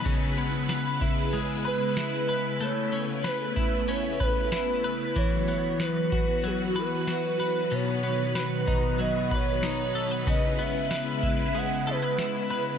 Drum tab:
HH |xxxxxxxx|xxxxxxxx|xxxxxxxx|xxxxxxxx|
SD |--o---o-|--o---o-|--o---o-|--o---o-|
BD |o--o----|---o-o--|o--o----|---o-o--|

HH |xxxxxxxx|
SD |--o---o-|
BD |o--o----|